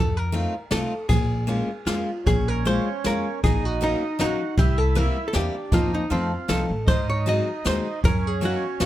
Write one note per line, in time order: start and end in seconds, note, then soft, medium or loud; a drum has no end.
0.00 0.45 F2 loud
0.00 0.17 A4 medium
0.17 0.71 A#4 medium
0.32 0.53 A3 medium
0.32 0.54 C4 medium
0.32 0.54 D#4 medium
0.32 0.54 F4 medium
0.32 ride soft
0.71 0.85 C2 medium
0.71 0.92 A3 medium
0.71 0.92 C4 medium
0.71 0.92 D#4 medium
0.71 0.93 F4 medium
0.71 1.09 A4 medium
0.71 snare medium
0.71 ride soft
1.09 1.60 A#1 loud
1.09 1.89 G#4 medium
1.09 kick medium
1.09 ride medium
1.47 1.69 G#3 medium
1.47 1.69 A#3 medium
1.47 1.69 C#4 medium
1.47 1.69 F4 medium
1.47 ride soft
1.86 2.00 F2 medium
1.86 2.08 G#3 medium
1.86 2.09 A#3 soft
1.86 2.09 C#4 soft
1.86 2.28 F4 medium
1.86 2.09 F4 medium
1.86 snare medium
1.86 ride soft
2.25 2.78 A#1 medium
2.25 3.39 C#4 loud
2.25 2.48 G#4 medium
2.25 kick medium
2.25 ride soft
2.48 2.67 A#4 medium
2.65 2.87 G#3 medium
2.65 2.87 A#3 soft
2.65 2.88 C#4 medium
2.65 2.88 F4 medium
2.65 3.07 C5 medium
2.65 ride soft
3.04 3.19 F2 medium
3.04 3.26 G#3 medium
3.04 3.26 A#3 soft
3.04 3.27 C#4 medium
3.04 3.27 F4 soft
3.04 3.43 A#4 medium
3.04 snare medium
3.04 ride soft
3.43 3.93 A#1 medium
3.43 4.22 D#4 loud
3.43 3.65 G#4 loud
3.43 kick medium
3.43 ride soft
3.65 3.83 F#4 medium
3.81 4.02 F#3 medium
3.81 4.02 A#3 soft
3.81 4.03 C#4 medium
3.81 4.03 D#4 medium
3.81 4.18 D#4 medium
3.81 ride soft
4.19 4.34 A#1 medium
4.19 4.40 F#3 medium
4.19 4.40 A#3 soft
4.19 4.41 C#4 soft
4.19 4.41 D#4 medium
4.19 4.60 D#4 medium
4.19 4.55 F#4 loud
4.19 snare medium
4.19 ride soft
4.57 5.07 C2 loud
4.57 5.37 E4 loud
4.57 4.78 G4 loud
4.57 kick medium
4.57 ride soft
4.78 4.96 A4 medium
4.95 5.16 G3 medium
4.95 5.16 A#3 medium
4.95 5.16 C4 medium
4.95 5.17 E4 medium
4.95 5.27 A#4 medium
4.95 ride soft
5.28 5.34 A4 medium
5.33 5.48 E2 medium
5.33 5.54 G3 medium
5.33 5.54 A#3 soft
5.33 5.54 C4 soft
5.33 5.73 D4 medium
5.33 5.55 E4 medium
5.33 5.74 G4 medium
5.33 snare medium
5.33 ride soft
5.72 5.96 F2 medium
5.72 6.03 F3 medium
5.72 6.03 A#3 medium
5.72 6.04 C4 medium
5.72 6.11 D#4 loud
5.72 6.04 D#4 medium
5.72 5.92 F4 loud
5.72 kick medium
5.72 ride soft
5.94 6.11 D#4 medium
6.10 6.35 F2 medium
6.10 6.31 F3 medium
6.10 6.31 A3 soft
6.10 6.31 C4 soft
6.10 6.50 C4 medium
6.10 6.31 D#4 medium
6.10 6.65 F4 medium
6.10 ride soft
6.48 6.67 C2 medium
6.48 6.69 F3 medium
6.48 6.70 A3 soft
6.48 6.70 C4 soft
6.48 6.70 D#4 medium
6.48 6.89 A4 medium
6.48 snare medium
6.48 ride soft
6.70 6.86 A1 medium
6.86 7.38 G#2 medium
6.86 7.99 D#4 loud
6.86 7.07 C5 loud
6.86 kick medium
6.86 ride soft
7.10 7.28 C#5 medium
7.26 7.47 F#3 medium
7.26 7.47 G#3 soft
7.26 7.48 C4 medium
7.26 7.48 D#4 medium
7.26 7.66 D#5 medium
7.26 ride soft
7.65 7.79 D#2 medium
7.65 7.86 F#3 soft
7.65 7.86 G#3 soft
7.65 7.86 C4 soft
7.65 7.87 D#4 medium
7.65 8.06 C5 medium
7.65 snare medium
7.65 ride soft
8.03 8.54 F#2 medium
8.03 8.86 C#4 loud
8.03 8.27 A#4 loud
8.03 kick medium
8.03 ride medium
8.27 8.44 G#4 medium
8.41 8.62 F#3 medium
8.41 8.63 A#3 medium
8.41 8.63 C#4 medium
8.41 8.63 D#4 medium
8.41 ride soft
8.45 8.81 F#4 medium
8.80 8.86 F#2 medium
8.80 8.86 F#3 medium
8.80 8.86 A#3 medium
8.80 8.86 C#4 soft
8.80 8.86 F#4 medium
8.80 snare medium
8.80 ride soft